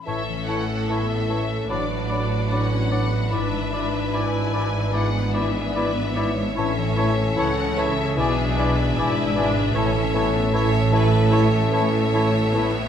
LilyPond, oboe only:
\new Staff \with { instrumentName = "Oboe" } { \time 4/4 \key a \major \tempo 4 = 74 cis''8 cis''8 cis''8 cis''8 d''8 d''8 d''8 d''8 | d''8 d''8 d''8 d''8 d''8 d''8 d''8 d''8 | cis''8 cis''8 cis''8 cis''8 d''8 d''8 d''8 d''8 | cis''8 cis''8 cis''8 cis''8 cis''8 cis''8 cis''8 cis''8 | }